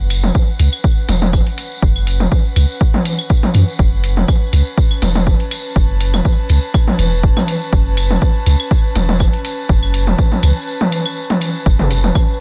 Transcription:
0.00 0.25 F#1 loud
0.00 12.40 C#4 medium
0.00 12.40 B4 medium
0.00 4.28 F#5 medium
0.10 open hi-hat medium
0.10 tambourine medium
0.10 claves medium
0.24 0.31 E1 medium
0.24 high tom medium
0.24 tambourine soft
0.35 kick loud
0.35 tambourine soft
0.48 tambourine soft
0.59 0.68 C#2 medium
0.59 open hi-hat medium
0.59 tambourine medium
0.72 tambourine soft
0.72 claves medium
0.84 kick loud
0.84 tambourine medium
0.98 tambourine soft
1.09 1.35 E1 medium
1.09 open hi-hat medium
1.09 high tom medium
1.09 tambourine medium
1.22 high tom medium
1.22 tambourine soft
1.33 1.42 F#1 medium
1.33 kick loud
1.33 tambourine medium
1.33 claves medium
1.47 open hi-hat soft
1.47 tambourine soft
1.58 open hi-hat medium
1.58 tambourine medium
1.72 tambourine soft
1.82 2.22 F#1 loud
1.82 kick loud
1.82 tambourine medium
1.96 tambourine soft
1.96 claves medium
2.07 open hi-hat medium
2.07 tambourine medium
2.20 2.28 E1 medium
2.20 high tom medium
2.20 tambourine soft
2.32 kick loud
2.32 tambourine soft
2.45 tambourine soft
2.56 2.65 C#2 medium
2.56 open hi-hat medium
2.56 tambourine medium
2.56 claves medium
2.70 tambourine soft
2.81 kick loud
2.81 tambourine soft
2.94 high tom medium
2.94 tambourine soft
3.05 open hi-hat medium
3.05 tambourine medium
3.19 tambourine soft
3.19 claves medium
3.29 kick loud
3.29 tambourine soft
3.43 open hi-hat soft
3.43 high tom medium
3.43 tambourine soft
3.54 3.63 F#2 medium
3.54 open hi-hat medium
3.54 tambourine medium
3.68 tambourine soft
3.79 4.18 F#1 medium
3.79 kick loud
3.79 tambourine medium
3.92 tambourine soft
4.04 open hi-hat medium
4.04 tambourine medium
4.17 4.25 E1 medium
4.17 high tom medium
4.17 tambourine soft
4.26 12.15 A5 medium
4.26 kick loud
4.26 tambourine soft
4.26 claves medium
4.41 tambourine soft
4.53 4.62 C#2 medium
4.53 open hi-hat medium
4.53 tambourine medium
4.67 tambourine soft
4.78 kick loud
4.78 tambourine soft
4.91 tambourine soft
4.91 claves medium
5.02 5.28 E1 medium
5.02 open hi-hat medium
5.02 high tom medium
5.02 tambourine medium
5.15 high tom medium
5.15 tambourine soft
5.27 5.36 F#1 medium
5.27 kick loud
5.27 tambourine soft
5.39 open hi-hat soft
5.39 tambourine soft
5.51 open hi-hat medium
5.51 tambourine medium
5.51 claves medium
5.65 tambourine soft
5.76 6.15 F#1 loud
5.76 kick loud
5.76 tambourine soft
5.89 tambourine soft
6.00 open hi-hat medium
6.00 tambourine medium
6.14 6.21 E1 medium
6.14 high tom medium
6.14 tambourine soft
6.14 claves medium
6.25 kick loud
6.25 tambourine soft
6.38 tambourine soft
6.49 6.59 C#2 medium
6.49 open hi-hat medium
6.49 tambourine medium
6.63 tambourine soft
6.74 kick loud
6.74 tambourine soft
6.74 claves medium
6.88 high tom medium
6.88 tambourine soft
6.99 7.25 E1 medium
6.99 open hi-hat medium
6.99 tambourine medium
7.12 tambourine soft
7.23 7.32 F#1 medium
7.23 kick loud
7.23 tambourine soft
7.37 open hi-hat soft
7.37 high tom medium
7.37 tambourine soft
7.37 claves medium
7.48 open hi-hat medium
7.48 tambourine medium
7.61 tambourine soft
7.72 8.12 F#1 loud
7.72 kick loud
7.72 tambourine soft
7.86 tambourine soft
7.97 open hi-hat medium
7.97 tambourine medium
7.97 claves medium
8.10 8.18 E1 medium
8.10 high tom soft
8.10 tambourine soft
8.22 kick loud
8.22 tambourine soft
8.35 tambourine soft
8.46 8.55 C#2 medium
8.46 open hi-hat medium
8.46 tambourine medium
8.60 tambourine soft
8.60 claves medium
8.71 kick loud
8.71 tambourine soft
8.84 tambourine soft
8.96 9.22 E1 medium
8.96 open hi-hat medium
8.96 high tom soft
8.96 tambourine medium
9.09 high tom medium
9.09 tambourine soft
9.20 9.29 F#1 medium
9.20 kick loud
9.20 tambourine soft
9.20 claves medium
9.33 open hi-hat soft
9.33 tambourine soft
9.45 open hi-hat medium
9.45 tambourine medium
9.59 tambourine soft
9.69 10.09 F#1 loud
9.69 kick loud
9.69 tambourine soft
9.82 tambourine soft
9.82 claves medium
9.94 open hi-hat medium
9.94 tambourine medium
10.07 10.15 E1 medium
10.07 high tom medium
10.07 tambourine soft
10.18 kick loud
10.18 tambourine soft
10.32 high tom soft
10.32 tambourine soft
10.43 10.52 C#2 medium
10.43 open hi-hat medium
10.43 tambourine medium
10.43 claves medium
10.57 tambourine soft
10.67 tambourine medium
10.81 high tom medium
10.81 tambourine soft
10.92 open hi-hat medium
10.92 tambourine medium
11.06 tambourine soft
11.06 claves medium
11.16 tambourine soft
11.30 open hi-hat soft
11.30 high tom medium
11.30 tambourine soft
11.41 open hi-hat medium
11.41 tambourine medium
11.55 tambourine soft
11.66 12.05 F#1 loud
11.66 kick loud
11.66 tambourine soft
11.79 mid tom medium
11.79 tambourine soft
11.91 open hi-hat medium
11.91 tambourine medium
12.04 12.12 E1 medium
12.04 high tom medium
12.04 tambourine soft
12.13 12.40 F#5 medium
12.13 kick loud
12.13 tambourine medium
12.13 claves medium
12.28 tambourine soft

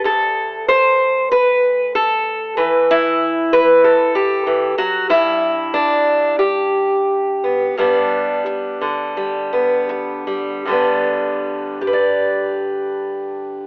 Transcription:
0.04 2.57 D2 medium
0.04 0.68 A4 medium
0.68 1.31 C5 loud
1.31 1.95 B4 loud
1.95 2.57 A4 medium
2.57 4.45 E3 medium
2.57 3.52 B4 medium
2.91 4.16 E4 medium
3.53 3.84 B4 loud
3.84 4.78 A4 loud
4.15 4.78 G4 medium
4.47 4.77 E3 medium
4.78 5.10 F#3 medium
4.78 5.10 F#4 loud
5.09 7.76 G2 medium
5.09 6.39 E4 loud
5.74 6.38 D4 medium
6.39 7.77 G4 medium
7.44 7.78 B3 soft
7.77 8.45 G2 medium
7.77 9.16 G3 medium
7.77 9.52 B3 medium
7.77 10.72 D4 medium
8.46 muted steel-string acoustic guitar stroke medium
8.81 10.66 D3 medium
9.17 10.26 G3 soft
9.53 10.70 B3 medium
9.89 muted steel-string acoustic guitar stroke medium
10.27 10.68 G3 soft
10.65 13.67 G2 medium
10.65 13.67 D3 soft
10.65 11.81 G3 soft
10.71 11.87 B3 soft
10.71 11.93 D4 soft
11.81 13.67 G4 medium
11.87 13.67 B4 medium
11.93 13.67 D5 medium

